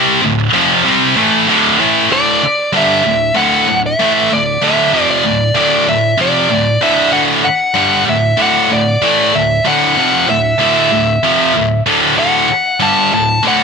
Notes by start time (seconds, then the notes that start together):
Already playing: C3 G3 C4
0.22 D2 A2
0.53 F2 C3 F3
0.85 C3 G3 C4
1.16 A2 E3 A3
1.48 D2 A2 D3
1.79 A2 E3 A3
2.10 D2 A2 D3 D5
2.44 muted distorted electric guitar stroke
2.73 G2 D3 G3 E5
3.04 D2 A2
3.34 D2 A2 D3 F#5
3.67 D2 A2
3.86 E5
3.99 A2 E3 A3
4.31 D2 A2 D5
4.62 D2 A2 D3 E5
4.93 F2 C3 F3
5.11 D5
5.24 D2 A2
5.55 D2 A2 D3 D5
5.88 D2 A2 E5
6.18 F2 C3 F3 D5
6.49 D2 A2
6.81 D2 A2 D3 E5
7.12 D2 A2 D3 F#5
7.43 F#5, muted distorted electric guitar stroke
7.74 G2 D3 G3
8.06 D2 A2 E5
8.37 D2 A2 D3
8.42 F#5
8.70 D2 A2 D5
9.02 A2 E3 A3
9.34 D2 A2 E5
9.65 D2 A2 D3 F#5
9.97 F2 C3 F3
10.28 D2 A2 E5
10.59 D2 A2 D3
10.92 D2 A2
11.23 F2 C3 F3
11.54 D2 A2
11.86 D2 A2 D3
12.16 D2 A2 D3 F#5
12.49 muted distorted electric guitar stroke
12.80 G2 D3 G3 A5
13.12 D2 A2 A5
13.43 D2 A2 D3
13.48 F#5